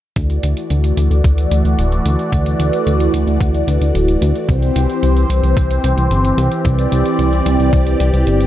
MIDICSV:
0, 0, Header, 1, 4, 480
1, 0, Start_track
1, 0, Tempo, 540541
1, 145, Time_signature, 4, 2, 24, 8
1, 7520, End_track
2, 0, Start_track
2, 0, Title_t, "Analog synth pad"
2, 0, Program_c, 0, 89
2, 140, Note_on_c, 0, 52, 78
2, 140, Note_on_c, 0, 74, 87
2, 141, Note_on_c, 0, 57, 76
2, 141, Note_on_c, 0, 66, 73
2, 3947, Note_off_c, 0, 52, 0
2, 3947, Note_off_c, 0, 57, 0
2, 3947, Note_off_c, 0, 66, 0
2, 3947, Note_off_c, 0, 74, 0
2, 3983, Note_on_c, 0, 52, 80
2, 3985, Note_on_c, 0, 60, 72
2, 3985, Note_on_c, 0, 72, 87
2, 3986, Note_on_c, 0, 67, 73
2, 5886, Note_off_c, 0, 72, 0
2, 5906, Note_on_c, 0, 74, 91
2, 7520, Note_off_c, 0, 52, 0
2, 7520, Note_off_c, 0, 60, 0
2, 7520, Note_off_c, 0, 67, 0
2, 7520, Note_off_c, 0, 74, 0
2, 7520, End_track
3, 0, Start_track
3, 0, Title_t, "Analog synth bass"
3, 0, Program_c, 1, 38
3, 144, Note_on_c, 1, 38, 97
3, 342, Note_off_c, 1, 38, 0
3, 385, Note_on_c, 1, 38, 81
3, 484, Note_off_c, 1, 38, 0
3, 625, Note_on_c, 1, 38, 81
3, 823, Note_off_c, 1, 38, 0
3, 863, Note_on_c, 1, 38, 87
3, 963, Note_off_c, 1, 38, 0
3, 982, Note_on_c, 1, 38, 83
3, 1082, Note_off_c, 1, 38, 0
3, 1104, Note_on_c, 1, 38, 86
3, 1302, Note_off_c, 1, 38, 0
3, 1343, Note_on_c, 1, 38, 90
3, 1443, Note_off_c, 1, 38, 0
3, 1464, Note_on_c, 1, 38, 75
3, 1564, Note_off_c, 1, 38, 0
3, 1585, Note_on_c, 1, 26, 79
3, 1783, Note_off_c, 1, 26, 0
3, 1826, Note_on_c, 1, 38, 100
3, 1924, Note_off_c, 1, 38, 0
3, 2064, Note_on_c, 1, 38, 98
3, 2262, Note_off_c, 1, 38, 0
3, 2306, Note_on_c, 1, 38, 83
3, 2404, Note_off_c, 1, 38, 0
3, 2545, Note_on_c, 1, 38, 80
3, 2743, Note_off_c, 1, 38, 0
3, 2785, Note_on_c, 1, 38, 88
3, 2884, Note_off_c, 1, 38, 0
3, 2904, Note_on_c, 1, 38, 85
3, 3003, Note_off_c, 1, 38, 0
3, 3025, Note_on_c, 1, 38, 81
3, 3223, Note_off_c, 1, 38, 0
3, 3264, Note_on_c, 1, 38, 86
3, 3363, Note_off_c, 1, 38, 0
3, 3385, Note_on_c, 1, 38, 78
3, 3484, Note_off_c, 1, 38, 0
3, 3504, Note_on_c, 1, 26, 78
3, 3702, Note_off_c, 1, 26, 0
3, 3745, Note_on_c, 1, 38, 98
3, 3844, Note_off_c, 1, 38, 0
3, 3984, Note_on_c, 1, 36, 101
3, 4182, Note_off_c, 1, 36, 0
3, 4226, Note_on_c, 1, 36, 78
3, 4324, Note_off_c, 1, 36, 0
3, 4465, Note_on_c, 1, 36, 77
3, 4663, Note_off_c, 1, 36, 0
3, 4704, Note_on_c, 1, 36, 85
3, 4803, Note_off_c, 1, 36, 0
3, 4824, Note_on_c, 1, 36, 83
3, 4923, Note_off_c, 1, 36, 0
3, 4944, Note_on_c, 1, 36, 84
3, 5142, Note_off_c, 1, 36, 0
3, 5184, Note_on_c, 1, 36, 89
3, 5283, Note_off_c, 1, 36, 0
3, 5304, Note_on_c, 1, 36, 78
3, 5403, Note_off_c, 1, 36, 0
3, 5422, Note_on_c, 1, 31, 78
3, 5621, Note_off_c, 1, 31, 0
3, 5663, Note_on_c, 1, 36, 97
3, 5763, Note_off_c, 1, 36, 0
3, 5903, Note_on_c, 1, 36, 98
3, 6102, Note_off_c, 1, 36, 0
3, 6144, Note_on_c, 1, 36, 82
3, 6243, Note_off_c, 1, 36, 0
3, 6385, Note_on_c, 1, 36, 80
3, 6583, Note_off_c, 1, 36, 0
3, 6624, Note_on_c, 1, 36, 87
3, 6723, Note_off_c, 1, 36, 0
3, 6743, Note_on_c, 1, 36, 81
3, 6843, Note_off_c, 1, 36, 0
3, 6864, Note_on_c, 1, 36, 84
3, 7062, Note_off_c, 1, 36, 0
3, 7104, Note_on_c, 1, 36, 86
3, 7203, Note_off_c, 1, 36, 0
3, 7224, Note_on_c, 1, 36, 77
3, 7323, Note_off_c, 1, 36, 0
3, 7345, Note_on_c, 1, 31, 78
3, 7520, Note_off_c, 1, 31, 0
3, 7520, End_track
4, 0, Start_track
4, 0, Title_t, "Drums"
4, 144, Note_on_c, 9, 36, 112
4, 144, Note_on_c, 9, 42, 65
4, 233, Note_off_c, 9, 36, 0
4, 233, Note_off_c, 9, 42, 0
4, 265, Note_on_c, 9, 42, 38
4, 354, Note_off_c, 9, 42, 0
4, 385, Note_on_c, 9, 42, 91
4, 474, Note_off_c, 9, 42, 0
4, 506, Note_on_c, 9, 42, 38
4, 594, Note_off_c, 9, 42, 0
4, 624, Note_on_c, 9, 42, 61
4, 713, Note_off_c, 9, 42, 0
4, 745, Note_on_c, 9, 42, 37
4, 834, Note_off_c, 9, 42, 0
4, 865, Note_on_c, 9, 42, 94
4, 954, Note_off_c, 9, 42, 0
4, 986, Note_on_c, 9, 42, 37
4, 1075, Note_off_c, 9, 42, 0
4, 1104, Note_on_c, 9, 36, 114
4, 1106, Note_on_c, 9, 42, 60
4, 1193, Note_off_c, 9, 36, 0
4, 1195, Note_off_c, 9, 42, 0
4, 1226, Note_on_c, 9, 42, 40
4, 1315, Note_off_c, 9, 42, 0
4, 1345, Note_on_c, 9, 42, 92
4, 1434, Note_off_c, 9, 42, 0
4, 1466, Note_on_c, 9, 42, 39
4, 1554, Note_off_c, 9, 42, 0
4, 1586, Note_on_c, 9, 42, 65
4, 1675, Note_off_c, 9, 42, 0
4, 1706, Note_on_c, 9, 42, 38
4, 1795, Note_off_c, 9, 42, 0
4, 1826, Note_on_c, 9, 42, 88
4, 1914, Note_off_c, 9, 42, 0
4, 1946, Note_on_c, 9, 42, 37
4, 2035, Note_off_c, 9, 42, 0
4, 2064, Note_on_c, 9, 36, 117
4, 2066, Note_on_c, 9, 42, 66
4, 2153, Note_off_c, 9, 36, 0
4, 2155, Note_off_c, 9, 42, 0
4, 2186, Note_on_c, 9, 42, 40
4, 2274, Note_off_c, 9, 42, 0
4, 2306, Note_on_c, 9, 42, 91
4, 2394, Note_off_c, 9, 42, 0
4, 2426, Note_on_c, 9, 42, 38
4, 2515, Note_off_c, 9, 42, 0
4, 2547, Note_on_c, 9, 42, 62
4, 2635, Note_off_c, 9, 42, 0
4, 2666, Note_on_c, 9, 42, 38
4, 2755, Note_off_c, 9, 42, 0
4, 2787, Note_on_c, 9, 42, 91
4, 2876, Note_off_c, 9, 42, 0
4, 2908, Note_on_c, 9, 42, 38
4, 2997, Note_off_c, 9, 42, 0
4, 3024, Note_on_c, 9, 36, 116
4, 3028, Note_on_c, 9, 42, 63
4, 3113, Note_off_c, 9, 36, 0
4, 3117, Note_off_c, 9, 42, 0
4, 3147, Note_on_c, 9, 42, 40
4, 3236, Note_off_c, 9, 42, 0
4, 3268, Note_on_c, 9, 42, 89
4, 3356, Note_off_c, 9, 42, 0
4, 3388, Note_on_c, 9, 42, 38
4, 3477, Note_off_c, 9, 42, 0
4, 3508, Note_on_c, 9, 42, 68
4, 3597, Note_off_c, 9, 42, 0
4, 3627, Note_on_c, 9, 42, 36
4, 3715, Note_off_c, 9, 42, 0
4, 3747, Note_on_c, 9, 42, 88
4, 3836, Note_off_c, 9, 42, 0
4, 3867, Note_on_c, 9, 42, 38
4, 3956, Note_off_c, 9, 42, 0
4, 3985, Note_on_c, 9, 36, 120
4, 3986, Note_on_c, 9, 42, 61
4, 4073, Note_off_c, 9, 36, 0
4, 4075, Note_off_c, 9, 42, 0
4, 4106, Note_on_c, 9, 42, 38
4, 4195, Note_off_c, 9, 42, 0
4, 4226, Note_on_c, 9, 42, 87
4, 4315, Note_off_c, 9, 42, 0
4, 4347, Note_on_c, 9, 42, 39
4, 4436, Note_off_c, 9, 42, 0
4, 4467, Note_on_c, 9, 42, 63
4, 4555, Note_off_c, 9, 42, 0
4, 4587, Note_on_c, 9, 42, 39
4, 4676, Note_off_c, 9, 42, 0
4, 4707, Note_on_c, 9, 42, 92
4, 4796, Note_off_c, 9, 42, 0
4, 4827, Note_on_c, 9, 42, 36
4, 4915, Note_off_c, 9, 42, 0
4, 4944, Note_on_c, 9, 36, 123
4, 4948, Note_on_c, 9, 42, 63
4, 5033, Note_off_c, 9, 36, 0
4, 5037, Note_off_c, 9, 42, 0
4, 5067, Note_on_c, 9, 42, 40
4, 5156, Note_off_c, 9, 42, 0
4, 5186, Note_on_c, 9, 42, 91
4, 5275, Note_off_c, 9, 42, 0
4, 5307, Note_on_c, 9, 42, 38
4, 5396, Note_off_c, 9, 42, 0
4, 5426, Note_on_c, 9, 42, 63
4, 5515, Note_off_c, 9, 42, 0
4, 5547, Note_on_c, 9, 42, 39
4, 5635, Note_off_c, 9, 42, 0
4, 5667, Note_on_c, 9, 42, 83
4, 5755, Note_off_c, 9, 42, 0
4, 5786, Note_on_c, 9, 42, 37
4, 5875, Note_off_c, 9, 42, 0
4, 5904, Note_on_c, 9, 36, 114
4, 5907, Note_on_c, 9, 42, 64
4, 5993, Note_off_c, 9, 36, 0
4, 5996, Note_off_c, 9, 42, 0
4, 6026, Note_on_c, 9, 42, 38
4, 6115, Note_off_c, 9, 42, 0
4, 6146, Note_on_c, 9, 42, 88
4, 6235, Note_off_c, 9, 42, 0
4, 6266, Note_on_c, 9, 42, 35
4, 6354, Note_off_c, 9, 42, 0
4, 6385, Note_on_c, 9, 42, 59
4, 6474, Note_off_c, 9, 42, 0
4, 6506, Note_on_c, 9, 42, 38
4, 6595, Note_off_c, 9, 42, 0
4, 6626, Note_on_c, 9, 42, 86
4, 6715, Note_off_c, 9, 42, 0
4, 6747, Note_on_c, 9, 42, 35
4, 6836, Note_off_c, 9, 42, 0
4, 6864, Note_on_c, 9, 36, 124
4, 6866, Note_on_c, 9, 42, 61
4, 6952, Note_off_c, 9, 36, 0
4, 6955, Note_off_c, 9, 42, 0
4, 6985, Note_on_c, 9, 42, 38
4, 7074, Note_off_c, 9, 42, 0
4, 7106, Note_on_c, 9, 42, 84
4, 7194, Note_off_c, 9, 42, 0
4, 7226, Note_on_c, 9, 42, 37
4, 7314, Note_off_c, 9, 42, 0
4, 7344, Note_on_c, 9, 42, 61
4, 7433, Note_off_c, 9, 42, 0
4, 7464, Note_on_c, 9, 42, 36
4, 7520, Note_off_c, 9, 42, 0
4, 7520, End_track
0, 0, End_of_file